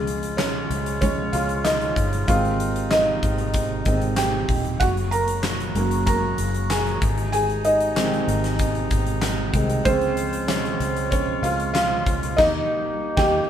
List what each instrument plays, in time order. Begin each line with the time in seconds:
Already playing: fingered electric bass C#2, woodwind section C#3 F3 G#3 F4, felt piano F3 G#3 C#4 G#4
0.07 closed hi-hat
0.23 closed hi-hat
0.37 felt piano C#4 C#5, snare, clap, closed hi-hat
0.70 fingered electric bass C#2, closed hi-hat
0.86 closed hi-hat
1.01 felt piano F3 G#3 C#4 C#5, kick, closed hi-hat
1.33 fingered electric bass C#2, felt piano F4 F5, closed hi-hat
1.49 closed hi-hat
1.64 felt piano D#4 D#5, snare, clap, closed hi-hat
1.81 closed hi-hat
1.96 fingered electric bass G1, kick, closed hi-hat
2.13 closed hi-hat
2.28 fingered electric bass G#1, woodwind section C3 D#3 D#4, felt piano D#3 G#3 C4 F4 F5, kick, closed hi-hat
2.45 closed hi-hat
2.60 closed hi-hat
2.76 closed hi-hat
2.91 felt piano D#4 D#5, snare, clap, closed hi-hat
3.23 fingered electric bass G#1, kick, closed hi-hat
3.38 closed hi-hat
3.54 kick, closed hi-hat
3.85 fingered electric bass G#1, felt piano D#3 G#3 C4, kick, closed hi-hat
4.01 closed hi-hat
4.16 felt piano G4 G5, snare, clap, closed hi-hat
4.48 fingered electric bass D#1, kick, open hi-hat
4.65 closed hi-hat
4.80 fingered electric bass F#1, woodwind section C#3 F#3 A#3 F#4, felt piano F#4 F#5, kick, closed hi-hat
4.97 closed hi-hat
5.11 felt piano A#4 A#5, closed hi-hat
5.28 closed hi-hat
5.43 snare, clap, closed hi-hat
5.60 closed hi-hat
5.75 fingered electric bass F#1, felt piano F#3 A#3 C#4, closed hi-hat
5.91 closed hi-hat
6.06 felt piano A#4 A#5, kick, closed hi-hat
6.38 fingered electric bass F#1, closed hi-hat
6.54 closed hi-hat
6.70 felt piano G#4 G#5, snare, clap, closed hi-hat
6.86 closed hi-hat
7.02 fingered electric bass G#1, woodwind section C3 D#3 G#3 D#4, kick, closed hi-hat
7.18 closed hi-hat
7.32 felt piano G#4 G#5, closed hi-hat
7.50 closed hi-hat
7.65 felt piano D#4 D#5, closed hi-hat
7.80 closed hi-hat
7.96 felt piano D#3 G#3 C4, snare, clap, closed hi-hat
8.14 closed hi-hat
8.28 fingered electric bass G#1, closed hi-hat
8.44 snare, closed hi-hat
8.59 kick, closed hi-hat
8.75 closed hi-hat
8.91 fingered electric bass G#1, kick, closed hi-hat
9.06 closed hi-hat
9.22 snare, clap, closed hi-hat
9.53 fingered electric bass C2, felt piano D#3 G#3 C4, kick, closed hi-hat
9.70 closed hi-hat
9.85 fingered electric bass C#2, woodwind section C#3 F3 F4, felt piano F3 G#3 C4 C#4 C5, kick, closed hi-hat
10.01 closed hi-hat
10.17 closed hi-hat
10.33 closed hi-hat
10.48 felt piano C#4 C#5, snare, clap, closed hi-hat
10.65 closed hi-hat
10.80 fingered electric bass C#2, closed hi-hat
10.96 closed hi-hat
11.11 felt piano C#4 C#5, kick, closed hi-hat
11.42 fingered electric bass C#2, felt piano F4 F5, closed hi-hat
11.60 closed hi-hat
11.74 felt piano F4 F5, snare, clap, closed hi-hat
12.06 fingered electric bass C#2, kick, closed hi-hat
12.23 closed hi-hat
12.37 fingered electric bass D#2, woodwind section D#3 G3 A#3 G4, felt piano D#4 D#5, kick, snare, crash
13.17 fingered electric bass D#2, felt piano G4 G5, kick, snare